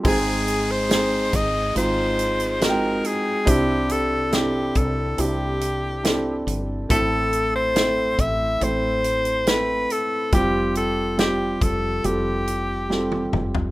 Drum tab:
CC |x---------------|----------------|----------------|----------------|
HH |--x-x-x-x-xxx-x-|x-x-x-x-x-x-x-x-|x-x-x-x-x-xxx-x-|x-x-x-x-x-x-----|
SD |----o-------o---|----o-------o---|----o-------o---|----o-------o---|
T1 |----------------|----------------|----------------|-------------o--|
T2 |----------------|----------------|----------------|--------------o-|
FT |----------------|----------------|----------------|---------------o|
BD |o-----o---------|o-----o---------|o-----o---------|o-----o---------|